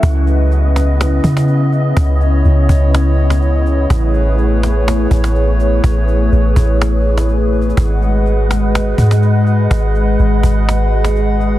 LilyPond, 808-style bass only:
\new Staff \with { instrumentName = "808-style bass" } { \clef bass \time 4/4 \key cis \minor \tempo 4 = 124 cis,2~ cis,8 cis4. | cis,4 cis,8 cis,2~ cis,8 | a,,2~ a,,8 a,,4. | a,,4 a,,8 a,,2~ a,,8 |
gis,,2~ gis,,8 gis,4. | gis,,4 gis,,8 gis,,2~ gis,,8 | }